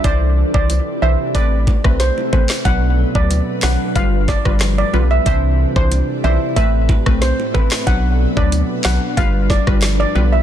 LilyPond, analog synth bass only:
\new Staff \with { instrumentName = "Analog synth bass" } { \clef bass \time 4/4 \key b \phrygian \tempo 4 = 92 c,8. c,8 r16 b,,16 r16 a,,8. b,,8 r16 a,,16 r16 | b,,8. d,8 r16 b,,16 r16 g,,8. g,,8. b,,8 | c,8. c,8 r16 b,,16 r16 a,,8. b,,8 r16 a,,16 r16 | b,,8. d,8 r16 b,,16 r16 g,,8. g,,8. b,,8 | }